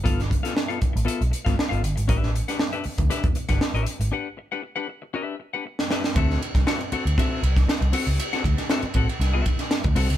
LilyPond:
<<
  \new Staff \with { instrumentName = "Clean electric guitar" } { \time 4/4 \key d \mixolydian \tempo 4 = 118 <b f' a' f''>16 r8 <b f' a' f''>16 r16 <b f' a' f''>16 r8 <b f' a' e''>16 r8 <b f' a' f''>16 r16 <b f' a' f''>16 r8 | <d' g' b' e''>8 r16 <d' g' b' fis''>16 r16 <d' g' b' e''>16 r8 <d' g' b' e''>16 r8 <d' g' b' fis''>16 r16 <d' g' b' e''>8 r16 | <d' g' b' fis''>16 r8 <d' g' b' fis''>16 r16 <d' g' b' fis''>16 r8 <d' g' b' e''>8 r16 <d' g' b' fis''>16 r8 <d' g' b' e''>16 r16 | <c' fis' a' e''>8 r8 <c' fis' a' fis''>16 r16 <c' fis' a' fis''>16 r16 <c' fis' a' e''>8 r4 <c' fis' a' fis''>16 r16 |
r16 <c' fis' a' fis''>16 r8 <c' fis' a' e''>16 r16 <c' fis' a' fis''>16 r8 <c' fis' a' e''>8 r8. <c' fis' a' fis''>16 r16 | }
  \new Staff \with { instrumentName = "Picked electric bass" } { \clef bass \time 4/4 \key d \mixolydian g,,8. r4 a,,16 r16 b,,16 r16 g,,16 r16 g,,16 g,,16 gis,,16 | a,,8. r4 d,16 r16 e,16 r16 g,,16 r16 a,,16 r16 gis,,16 | r1 | d,8 r16 c,16 r8. d,16 r8 c,8 r16 c,16 r16 cis,16 |
r8 d,16 r8. a,,16 r16 c,8 r8. d,16 c,16 cis,16 | }
  \new DrumStaff \with { instrumentName = "Drums" } \drummode { \time 4/4 <hh bd>16 <hh sn>16 <hh bd>16 <hh sn>16 sn16 hh16 <hh bd>16 hh16 hh16 hh16 hh16 <hh bd sn>16 sn16 hh16 hh16 hh16 | <hh bd>16 sn16 hh16 <hh sn>16 sn16 hh16 hho16 <hh bd>16 <hh sn>16 <hh bd>16 hh16 <hh bd sn>16 sn16 hh16 hh16 hh16 | r4 r4 r4 r16 sn16 sn16 sn16 | <bd rb>16 sn16 rb16 <bd rb sn>16 <rb sn>16 rb16 rb16 rb16 <bd rb sn>8 rb16 <bd rb sn>16 <rb sn>16 rb16 <hho rb>16 rb16 |
<hhp rb>16 <rb sn>16 <bd rb>16 <rb sn>16 <rb sn>16 rb16 <bd rb>16 rb16 <rb sn>8 <bd rb>16 <rb sn>16 <rb sn>16 <bd rb>16 <hho rb>16 rb16 | }
>>